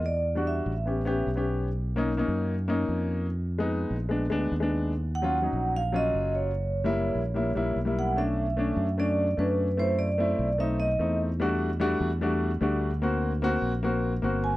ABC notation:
X:1
M:4/4
L:1/16
Q:1/4=148
K:Gb
V:1 name="Vibraphone"
=d4 =e8- e2 z2 | z16 | z16 | z2 g6 f2 e4 d2- |
d12 z2 g2 | [K:Bm] e8 d4 B4 | =c2 d6 e2 ^d4 z2 | z16 |
z12 z2 ^g2 |]
V:2 name="Grand piano"
z3 [=G,=D_G]3 z2 [=B,^C=G] z [B,CG]2 z [B,CG]3 | z3 [^A,^C^D] z [A,CD]3 z2 [A,CD]6 | z3 [A,CE]3 z2 [A,C=D] z [A,CD]2 z [A,CD]3 | z3 [G,DF] z [G,DE]3 z2 [G,DF]6 |
z3 [=G,B,_F]3 z2 [G,B,F] z [G,B,F]2 z [G,B,F]3 | [K:Bm] [A,CD]3 z [A,CD]3 z [A,CD]3 z [A,CD]3 z | [A,=CE]3 z [A,CE]3 z [A,C^D]3 z [A,CD]3 z | [G,A,DF]3 z [G,A,DF]3 z [G,A,DF]3 z [G,A,DF]3 z |
[^A,=CF]3 z [A,CF]3 z [A,CF]3 z [A,CF]3 z |]
V:3 name="Fingered electric bass" clef=bass
_F,,6 =A,,,6 =B,,,4- | =B,,,6 ^F,,6 =F,,4- | F,,6 B,,,4 =D,,2 E,,4- | E,,6 B,,,6 G,,,4- |
G,,,6 B,,,4 B,,,2 C,,4- | [K:Bm] _C,,6 F,,6 F,,4- | F,,6 B,,,6 E,,4- | E,,6 E,,6 D,,4- |
D,,6 ^A,,,6 G,,,4 |]